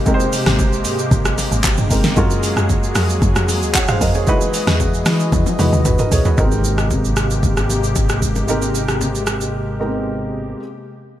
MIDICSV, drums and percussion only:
0, 0, Header, 1, 2, 480
1, 0, Start_track
1, 0, Key_signature, -4, "major"
1, 0, Tempo, 526316
1, 57, Time_signature, 4, 2, 24, 8
1, 10214, End_track
2, 0, Start_track
2, 0, Title_t, "Drums"
2, 54, Note_on_c, 9, 64, 73
2, 57, Note_on_c, 9, 82, 60
2, 58, Note_on_c, 9, 36, 123
2, 146, Note_off_c, 9, 64, 0
2, 149, Note_off_c, 9, 36, 0
2, 149, Note_off_c, 9, 82, 0
2, 183, Note_on_c, 9, 60, 48
2, 183, Note_on_c, 9, 82, 56
2, 274, Note_off_c, 9, 60, 0
2, 274, Note_off_c, 9, 82, 0
2, 300, Note_on_c, 9, 46, 50
2, 300, Note_on_c, 9, 82, 85
2, 304, Note_on_c, 9, 61, 43
2, 391, Note_off_c, 9, 46, 0
2, 391, Note_off_c, 9, 82, 0
2, 395, Note_off_c, 9, 61, 0
2, 423, Note_on_c, 9, 37, 90
2, 423, Note_on_c, 9, 38, 66
2, 425, Note_on_c, 9, 82, 46
2, 514, Note_off_c, 9, 37, 0
2, 514, Note_off_c, 9, 38, 0
2, 517, Note_off_c, 9, 82, 0
2, 538, Note_on_c, 9, 36, 89
2, 539, Note_on_c, 9, 60, 63
2, 539, Note_on_c, 9, 64, 67
2, 539, Note_on_c, 9, 82, 68
2, 629, Note_off_c, 9, 36, 0
2, 630, Note_off_c, 9, 60, 0
2, 630, Note_off_c, 9, 64, 0
2, 631, Note_off_c, 9, 82, 0
2, 666, Note_on_c, 9, 82, 45
2, 757, Note_off_c, 9, 82, 0
2, 773, Note_on_c, 9, 46, 49
2, 773, Note_on_c, 9, 82, 84
2, 864, Note_off_c, 9, 46, 0
2, 864, Note_off_c, 9, 82, 0
2, 902, Note_on_c, 9, 82, 55
2, 993, Note_off_c, 9, 82, 0
2, 1014, Note_on_c, 9, 64, 75
2, 1016, Note_on_c, 9, 36, 125
2, 1020, Note_on_c, 9, 82, 65
2, 1105, Note_off_c, 9, 64, 0
2, 1107, Note_off_c, 9, 36, 0
2, 1111, Note_off_c, 9, 82, 0
2, 1143, Note_on_c, 9, 82, 59
2, 1144, Note_on_c, 9, 37, 98
2, 1145, Note_on_c, 9, 60, 51
2, 1234, Note_off_c, 9, 82, 0
2, 1235, Note_off_c, 9, 37, 0
2, 1236, Note_off_c, 9, 60, 0
2, 1257, Note_on_c, 9, 61, 79
2, 1261, Note_on_c, 9, 46, 52
2, 1261, Note_on_c, 9, 82, 88
2, 1349, Note_off_c, 9, 61, 0
2, 1352, Note_off_c, 9, 46, 0
2, 1352, Note_off_c, 9, 82, 0
2, 1387, Note_on_c, 9, 82, 58
2, 1478, Note_off_c, 9, 82, 0
2, 1495, Note_on_c, 9, 60, 66
2, 1496, Note_on_c, 9, 39, 95
2, 1498, Note_on_c, 9, 82, 86
2, 1499, Note_on_c, 9, 36, 100
2, 1587, Note_off_c, 9, 60, 0
2, 1588, Note_off_c, 9, 39, 0
2, 1589, Note_off_c, 9, 82, 0
2, 1590, Note_off_c, 9, 36, 0
2, 1618, Note_on_c, 9, 82, 61
2, 1624, Note_on_c, 9, 45, 100
2, 1710, Note_off_c, 9, 82, 0
2, 1715, Note_off_c, 9, 45, 0
2, 1738, Note_on_c, 9, 36, 82
2, 1740, Note_on_c, 9, 46, 53
2, 1740, Note_on_c, 9, 82, 91
2, 1829, Note_off_c, 9, 36, 0
2, 1831, Note_off_c, 9, 46, 0
2, 1831, Note_off_c, 9, 82, 0
2, 1858, Note_on_c, 9, 82, 43
2, 1860, Note_on_c, 9, 38, 64
2, 1864, Note_on_c, 9, 61, 79
2, 1949, Note_off_c, 9, 82, 0
2, 1951, Note_off_c, 9, 38, 0
2, 1955, Note_off_c, 9, 61, 0
2, 1975, Note_on_c, 9, 64, 69
2, 1976, Note_on_c, 9, 82, 64
2, 1978, Note_on_c, 9, 36, 126
2, 2066, Note_off_c, 9, 64, 0
2, 2067, Note_off_c, 9, 82, 0
2, 2069, Note_off_c, 9, 36, 0
2, 2102, Note_on_c, 9, 82, 57
2, 2103, Note_on_c, 9, 60, 50
2, 2193, Note_off_c, 9, 82, 0
2, 2194, Note_off_c, 9, 60, 0
2, 2219, Note_on_c, 9, 46, 47
2, 2219, Note_on_c, 9, 82, 83
2, 2224, Note_on_c, 9, 61, 45
2, 2310, Note_off_c, 9, 46, 0
2, 2310, Note_off_c, 9, 82, 0
2, 2315, Note_off_c, 9, 61, 0
2, 2342, Note_on_c, 9, 37, 89
2, 2345, Note_on_c, 9, 82, 46
2, 2434, Note_off_c, 9, 37, 0
2, 2436, Note_off_c, 9, 82, 0
2, 2458, Note_on_c, 9, 36, 88
2, 2458, Note_on_c, 9, 60, 64
2, 2458, Note_on_c, 9, 64, 66
2, 2459, Note_on_c, 9, 82, 65
2, 2549, Note_off_c, 9, 36, 0
2, 2550, Note_off_c, 9, 60, 0
2, 2550, Note_off_c, 9, 64, 0
2, 2550, Note_off_c, 9, 82, 0
2, 2586, Note_on_c, 9, 82, 45
2, 2677, Note_off_c, 9, 82, 0
2, 2693, Note_on_c, 9, 46, 49
2, 2693, Note_on_c, 9, 82, 84
2, 2694, Note_on_c, 9, 37, 103
2, 2785, Note_off_c, 9, 46, 0
2, 2785, Note_off_c, 9, 82, 0
2, 2786, Note_off_c, 9, 37, 0
2, 2823, Note_on_c, 9, 82, 53
2, 2914, Note_off_c, 9, 82, 0
2, 2934, Note_on_c, 9, 64, 78
2, 2936, Note_on_c, 9, 36, 118
2, 2940, Note_on_c, 9, 82, 71
2, 3025, Note_off_c, 9, 64, 0
2, 3027, Note_off_c, 9, 36, 0
2, 3031, Note_off_c, 9, 82, 0
2, 3063, Note_on_c, 9, 82, 63
2, 3064, Note_on_c, 9, 37, 98
2, 3066, Note_on_c, 9, 60, 55
2, 3155, Note_off_c, 9, 37, 0
2, 3155, Note_off_c, 9, 82, 0
2, 3157, Note_off_c, 9, 60, 0
2, 3178, Note_on_c, 9, 61, 76
2, 3181, Note_on_c, 9, 46, 52
2, 3181, Note_on_c, 9, 82, 90
2, 3269, Note_off_c, 9, 61, 0
2, 3272, Note_off_c, 9, 46, 0
2, 3272, Note_off_c, 9, 82, 0
2, 3307, Note_on_c, 9, 82, 54
2, 3398, Note_off_c, 9, 82, 0
2, 3416, Note_on_c, 9, 60, 68
2, 3417, Note_on_c, 9, 39, 94
2, 3418, Note_on_c, 9, 82, 84
2, 3419, Note_on_c, 9, 36, 101
2, 3507, Note_off_c, 9, 60, 0
2, 3508, Note_off_c, 9, 39, 0
2, 3509, Note_off_c, 9, 82, 0
2, 3510, Note_off_c, 9, 36, 0
2, 3538, Note_on_c, 9, 82, 62
2, 3543, Note_on_c, 9, 37, 98
2, 3543, Note_on_c, 9, 45, 103
2, 3629, Note_off_c, 9, 82, 0
2, 3634, Note_off_c, 9, 37, 0
2, 3635, Note_off_c, 9, 45, 0
2, 3657, Note_on_c, 9, 36, 83
2, 3660, Note_on_c, 9, 46, 54
2, 3660, Note_on_c, 9, 82, 96
2, 3749, Note_off_c, 9, 36, 0
2, 3751, Note_off_c, 9, 46, 0
2, 3751, Note_off_c, 9, 82, 0
2, 3778, Note_on_c, 9, 82, 43
2, 3785, Note_on_c, 9, 61, 76
2, 3870, Note_off_c, 9, 82, 0
2, 3876, Note_off_c, 9, 61, 0
2, 3894, Note_on_c, 9, 64, 73
2, 3896, Note_on_c, 9, 82, 64
2, 3897, Note_on_c, 9, 36, 122
2, 3985, Note_off_c, 9, 64, 0
2, 3987, Note_off_c, 9, 82, 0
2, 3989, Note_off_c, 9, 36, 0
2, 4021, Note_on_c, 9, 60, 49
2, 4022, Note_on_c, 9, 82, 55
2, 4112, Note_off_c, 9, 60, 0
2, 4113, Note_off_c, 9, 82, 0
2, 4139, Note_on_c, 9, 46, 49
2, 4139, Note_on_c, 9, 82, 84
2, 4142, Note_on_c, 9, 61, 42
2, 4230, Note_off_c, 9, 46, 0
2, 4230, Note_off_c, 9, 82, 0
2, 4233, Note_off_c, 9, 61, 0
2, 4263, Note_on_c, 9, 37, 84
2, 4263, Note_on_c, 9, 38, 66
2, 4265, Note_on_c, 9, 82, 46
2, 4354, Note_off_c, 9, 37, 0
2, 4354, Note_off_c, 9, 38, 0
2, 4357, Note_off_c, 9, 82, 0
2, 4377, Note_on_c, 9, 60, 65
2, 4377, Note_on_c, 9, 64, 64
2, 4378, Note_on_c, 9, 36, 84
2, 4379, Note_on_c, 9, 82, 68
2, 4468, Note_off_c, 9, 60, 0
2, 4468, Note_off_c, 9, 64, 0
2, 4469, Note_off_c, 9, 36, 0
2, 4471, Note_off_c, 9, 82, 0
2, 4506, Note_on_c, 9, 82, 45
2, 4597, Note_off_c, 9, 82, 0
2, 4613, Note_on_c, 9, 46, 50
2, 4613, Note_on_c, 9, 82, 88
2, 4614, Note_on_c, 9, 37, 96
2, 4614, Note_on_c, 9, 38, 70
2, 4704, Note_off_c, 9, 46, 0
2, 4704, Note_off_c, 9, 82, 0
2, 4705, Note_off_c, 9, 37, 0
2, 4705, Note_off_c, 9, 38, 0
2, 4742, Note_on_c, 9, 82, 53
2, 4833, Note_off_c, 9, 82, 0
2, 4853, Note_on_c, 9, 64, 78
2, 4855, Note_on_c, 9, 36, 127
2, 4857, Note_on_c, 9, 48, 59
2, 4859, Note_on_c, 9, 82, 70
2, 4944, Note_off_c, 9, 64, 0
2, 4947, Note_off_c, 9, 36, 0
2, 4949, Note_off_c, 9, 48, 0
2, 4951, Note_off_c, 9, 82, 0
2, 4982, Note_on_c, 9, 60, 52
2, 4983, Note_on_c, 9, 48, 54
2, 4984, Note_on_c, 9, 82, 63
2, 5073, Note_off_c, 9, 60, 0
2, 5074, Note_off_c, 9, 48, 0
2, 5076, Note_off_c, 9, 82, 0
2, 5096, Note_on_c, 9, 61, 77
2, 5099, Note_on_c, 9, 47, 73
2, 5103, Note_on_c, 9, 46, 53
2, 5103, Note_on_c, 9, 82, 87
2, 5187, Note_off_c, 9, 61, 0
2, 5190, Note_off_c, 9, 47, 0
2, 5194, Note_off_c, 9, 46, 0
2, 5194, Note_off_c, 9, 82, 0
2, 5223, Note_on_c, 9, 47, 67
2, 5227, Note_on_c, 9, 82, 56
2, 5315, Note_off_c, 9, 47, 0
2, 5319, Note_off_c, 9, 82, 0
2, 5335, Note_on_c, 9, 60, 67
2, 5338, Note_on_c, 9, 45, 84
2, 5338, Note_on_c, 9, 82, 86
2, 5339, Note_on_c, 9, 36, 100
2, 5426, Note_off_c, 9, 60, 0
2, 5429, Note_off_c, 9, 45, 0
2, 5429, Note_off_c, 9, 82, 0
2, 5430, Note_off_c, 9, 36, 0
2, 5459, Note_on_c, 9, 82, 64
2, 5463, Note_on_c, 9, 45, 78
2, 5551, Note_off_c, 9, 82, 0
2, 5554, Note_off_c, 9, 45, 0
2, 5578, Note_on_c, 9, 43, 92
2, 5581, Note_on_c, 9, 46, 53
2, 5581, Note_on_c, 9, 82, 88
2, 5669, Note_off_c, 9, 43, 0
2, 5672, Note_off_c, 9, 46, 0
2, 5672, Note_off_c, 9, 82, 0
2, 5700, Note_on_c, 9, 82, 42
2, 5703, Note_on_c, 9, 43, 90
2, 5704, Note_on_c, 9, 61, 74
2, 5791, Note_off_c, 9, 82, 0
2, 5794, Note_off_c, 9, 43, 0
2, 5795, Note_off_c, 9, 61, 0
2, 5815, Note_on_c, 9, 64, 70
2, 5817, Note_on_c, 9, 82, 64
2, 5818, Note_on_c, 9, 36, 120
2, 5906, Note_off_c, 9, 64, 0
2, 5908, Note_off_c, 9, 82, 0
2, 5909, Note_off_c, 9, 36, 0
2, 5943, Note_on_c, 9, 82, 55
2, 5944, Note_on_c, 9, 60, 49
2, 6034, Note_off_c, 9, 82, 0
2, 6035, Note_off_c, 9, 60, 0
2, 6060, Note_on_c, 9, 82, 81
2, 6065, Note_on_c, 9, 61, 43
2, 6151, Note_off_c, 9, 82, 0
2, 6156, Note_off_c, 9, 61, 0
2, 6184, Note_on_c, 9, 37, 85
2, 6184, Note_on_c, 9, 61, 64
2, 6186, Note_on_c, 9, 82, 44
2, 6275, Note_off_c, 9, 37, 0
2, 6276, Note_off_c, 9, 61, 0
2, 6277, Note_off_c, 9, 82, 0
2, 6299, Note_on_c, 9, 36, 83
2, 6299, Note_on_c, 9, 60, 64
2, 6299, Note_on_c, 9, 64, 64
2, 6301, Note_on_c, 9, 82, 66
2, 6390, Note_off_c, 9, 36, 0
2, 6390, Note_off_c, 9, 60, 0
2, 6390, Note_off_c, 9, 64, 0
2, 6392, Note_off_c, 9, 82, 0
2, 6427, Note_on_c, 9, 82, 46
2, 6518, Note_off_c, 9, 82, 0
2, 6535, Note_on_c, 9, 82, 82
2, 6536, Note_on_c, 9, 37, 96
2, 6627, Note_off_c, 9, 37, 0
2, 6627, Note_off_c, 9, 82, 0
2, 6663, Note_on_c, 9, 82, 52
2, 6754, Note_off_c, 9, 82, 0
2, 6776, Note_on_c, 9, 36, 114
2, 6776, Note_on_c, 9, 64, 75
2, 6781, Note_on_c, 9, 82, 64
2, 6867, Note_off_c, 9, 64, 0
2, 6868, Note_off_c, 9, 36, 0
2, 6872, Note_off_c, 9, 82, 0
2, 6905, Note_on_c, 9, 37, 91
2, 6905, Note_on_c, 9, 82, 56
2, 6906, Note_on_c, 9, 60, 49
2, 6996, Note_off_c, 9, 82, 0
2, 6997, Note_off_c, 9, 37, 0
2, 6997, Note_off_c, 9, 60, 0
2, 7019, Note_on_c, 9, 61, 69
2, 7022, Note_on_c, 9, 82, 85
2, 7110, Note_off_c, 9, 61, 0
2, 7114, Note_off_c, 9, 82, 0
2, 7148, Note_on_c, 9, 82, 54
2, 7239, Note_off_c, 9, 82, 0
2, 7257, Note_on_c, 9, 60, 67
2, 7258, Note_on_c, 9, 82, 85
2, 7259, Note_on_c, 9, 36, 96
2, 7348, Note_off_c, 9, 60, 0
2, 7349, Note_off_c, 9, 82, 0
2, 7350, Note_off_c, 9, 36, 0
2, 7379, Note_on_c, 9, 82, 62
2, 7384, Note_on_c, 9, 37, 92
2, 7471, Note_off_c, 9, 82, 0
2, 7475, Note_off_c, 9, 37, 0
2, 7498, Note_on_c, 9, 36, 80
2, 7501, Note_on_c, 9, 82, 93
2, 7589, Note_off_c, 9, 36, 0
2, 7592, Note_off_c, 9, 82, 0
2, 7620, Note_on_c, 9, 82, 42
2, 7624, Note_on_c, 9, 61, 69
2, 7711, Note_off_c, 9, 82, 0
2, 7715, Note_off_c, 9, 61, 0
2, 7736, Note_on_c, 9, 64, 69
2, 7737, Note_on_c, 9, 82, 58
2, 7827, Note_off_c, 9, 64, 0
2, 7828, Note_off_c, 9, 82, 0
2, 7862, Note_on_c, 9, 82, 53
2, 7864, Note_on_c, 9, 60, 48
2, 7953, Note_off_c, 9, 82, 0
2, 7955, Note_off_c, 9, 60, 0
2, 7980, Note_on_c, 9, 82, 80
2, 7984, Note_on_c, 9, 61, 44
2, 8071, Note_off_c, 9, 82, 0
2, 8075, Note_off_c, 9, 61, 0
2, 8103, Note_on_c, 9, 37, 88
2, 8104, Note_on_c, 9, 61, 65
2, 8105, Note_on_c, 9, 82, 44
2, 8194, Note_off_c, 9, 37, 0
2, 8195, Note_off_c, 9, 61, 0
2, 8197, Note_off_c, 9, 82, 0
2, 8218, Note_on_c, 9, 60, 63
2, 8218, Note_on_c, 9, 64, 63
2, 8220, Note_on_c, 9, 82, 66
2, 8310, Note_off_c, 9, 60, 0
2, 8310, Note_off_c, 9, 64, 0
2, 8311, Note_off_c, 9, 82, 0
2, 8346, Note_on_c, 9, 82, 43
2, 8437, Note_off_c, 9, 82, 0
2, 8453, Note_on_c, 9, 82, 80
2, 8454, Note_on_c, 9, 37, 97
2, 8544, Note_off_c, 9, 82, 0
2, 8545, Note_off_c, 9, 37, 0
2, 8581, Note_on_c, 9, 82, 50
2, 8673, Note_off_c, 9, 82, 0
2, 10214, End_track
0, 0, End_of_file